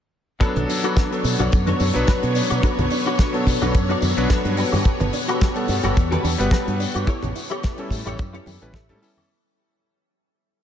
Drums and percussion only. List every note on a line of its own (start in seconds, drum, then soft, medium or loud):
0.41 kick loud
0.41 closed hi-hat medium
0.41 tambourine soft
0.56 closed hi-hat soft
0.56 high conga medium
0.56 low conga medium
0.69 open hi-hat loud
0.69 tambourine medium
0.84 closed hi-hat medium
0.84 tambourine soft
0.84 high woodblock medium
0.97 kick loud
0.97 snare loud
0.97 closed hi-hat medium
1.12 closed hi-hat soft
1.24 open hi-hat loud
1.24 tambourine medium
1.39 closed hi-hat medium
1.39 tambourine soft
1.39 low conga medium
1.39 high woodblock medium
1.52 kick loud
1.52 closed hi-hat medium
1.52 tambourine soft
1.67 closed hi-hat soft
1.67 high conga medium
1.80 open hi-hat loud
1.80 tambourine medium
1.95 closed hi-hat medium
1.95 tambourine soft
2.07 kick loud
2.07 snare loud
2.07 closed hi-hat medium
2.07 tambourine soft
2.23 closed hi-hat soft
2.35 open hi-hat loud
2.35 tambourine medium
2.50 closed hi-hat medium
2.50 tambourine soft
2.50 high woodblock medium
2.63 kick loud
2.63 closed hi-hat medium
2.63 tambourine soft
2.79 closed hi-hat soft
2.79 high conga loud
2.79 low conga medium
2.90 open hi-hat loud
2.90 tambourine medium
3.06 closed hi-hat medium
3.06 tambourine soft
3.06 high woodblock medium
3.19 kick loud
3.19 snare loud
3.19 closed hi-hat medium
3.19 tambourine soft
3.34 closed hi-hat soft
3.47 kick medium
3.47 open hi-hat loud
3.47 tambourine medium
3.62 closed hi-hat medium
3.62 tambourine soft
3.62 low conga medium
3.62 high woodblock medium
3.75 kick loud
3.75 closed hi-hat medium
3.75 tambourine soft
3.90 closed hi-hat soft
4.02 open hi-hat loud
4.02 tambourine medium
4.02 high conga medium
4.18 closed hi-hat medium
4.18 tambourine soft
4.30 kick loud
4.30 snare loud
4.30 closed hi-hat medium
4.30 tambourine soft
4.45 closed hi-hat soft
4.57 open hi-hat loud
4.57 tambourine medium
4.72 open hi-hat medium
4.72 tambourine soft
4.72 high conga loud
4.72 high woodblock medium
4.85 kick loud
4.85 closed hi-hat medium
4.85 tambourine soft
5.00 closed hi-hat soft
5.00 high conga medium
5.00 low conga medium
5.13 open hi-hat loud
5.13 tambourine medium
5.29 closed hi-hat medium
5.29 tambourine soft
5.29 high woodblock medium
5.41 kick loud
5.41 snare loud
5.41 closed hi-hat medium
5.56 closed hi-hat soft
5.68 open hi-hat loud
5.68 tambourine medium
5.83 closed hi-hat medium
5.83 tambourine soft
5.83 low conga medium
5.83 high woodblock medium
5.97 kick loud
5.97 closed hi-hat medium
5.97 tambourine soft
6.12 closed hi-hat soft
6.12 high conga medium
6.25 open hi-hat loud
6.25 tambourine medium
6.41 closed hi-hat medium
6.41 tambourine soft
6.51 kick loud
6.51 snare loud
6.51 closed hi-hat medium
6.51 tambourine soft
6.68 closed hi-hat soft
6.80 open hi-hat loud
6.80 tambourine medium
6.96 closed hi-hat medium
6.96 tambourine soft
6.96 high woodblock medium
7.07 kick loud
7.07 closed hi-hat medium
7.07 tambourine soft
7.23 closed hi-hat soft
7.23 high conga loud
7.23 low conga medium
7.36 open hi-hat loud
7.36 tambourine medium
7.50 closed hi-hat medium
7.50 tambourine soft
7.50 high woodblock medium
7.63 kick loud
7.63 snare loud
7.63 closed hi-hat medium
7.63 tambourine soft
7.78 closed hi-hat soft
7.90 kick medium
7.90 open hi-hat loud
7.90 tambourine medium
8.06 closed hi-hat medium
8.06 tambourine soft
8.06 low conga medium
8.06 high woodblock medium
8.19 kick loud
8.19 closed hi-hat medium
8.34 closed hi-hat medium
8.46 open hi-hat loud
8.46 tambourine medium
8.46 high conga medium
8.63 closed hi-hat medium
8.63 tambourine soft
8.74 kick loud
8.74 snare loud
8.74 closed hi-hat medium
8.74 tambourine soft
8.89 closed hi-hat soft
9.03 open hi-hat loud
9.03 tambourine medium
9.17 open hi-hat medium
9.17 tambourine soft
9.17 high conga medium
9.17 high woodblock medium